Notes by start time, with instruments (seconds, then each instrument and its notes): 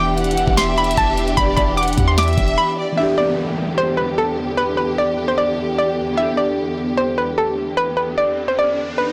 Already playing: 808-style bass E1, synth keys E3 B3 D4 G4, string section E3 D4 G4, violin section G5, synth pluck D6
0.18 violin section F#5, closed hi-hat
0.24 closed hi-hat
0.31 closed hi-hat
0.37 closed hi-hat
0.48 808-style bass E1, kick
0.57 violin section E5, synth pluck C6, snare, closed hi-hat
0.78 synth pluck B5, closed hi-hat
0.84 closed hi-hat
0.91 closed hi-hat
0.97 808-style bass E1, synth pluck A5, kick, closed hi-hat
1.18 closed hi-hat
1.28 closed hi-hat
1.37 808-style bass E1, violin section D5, synth pluck B5, kick, closed hi-hat
1.57 808-style bass E1, synth pluck B5, kick, closed hi-hat
1.77 violin section F#5, synth pluck D6, closed hi-hat
1.83 closed hi-hat
1.88 closed hi-hat
1.93 closed hi-hat
1.98 808-style bass E2, kick, closed hi-hat
2.08 synth pluck C6
2.18 violin section E5, synth pluck D6, snare, closed hi-hat
2.23 closed hi-hat
2.28 closed hi-hat
2.33 closed hi-hat
2.38 808-style bass E1, kick, closed hi-hat
2.48 closed hi-hat
2.58 synth pluck B5
2.78 violin section D5
2.93 synth keys E3 B3
2.98 string section E2 D3 G4, synth keys D4, synth pluck E5, downlifter
3.03 synth keys G4
3.18 synth pluck D5
3.78 synth pluck C5
3.97 synth pluck B4
4.18 synth pluck A4
4.57 synth pluck B4
4.77 synth pluck B4
4.98 synth pluck D5
5.28 synth pluck C5
5.38 synth pluck D5
5.78 synth pluck D5
6.12 synth keys E3 B3
6.17 synth keys D4, synth pluck E5, riser
6.23 synth keys G4
6.37 synth pluck D5
6.97 synth pluck C5
7.18 synth pluck B4
7.38 synth pluck A4
7.77 synth pluck B4
7.97 synth pluck B4
8.18 synth pluck D5
8.48 synth pluck C5
8.59 synth pluck D5
8.98 synth pluck B4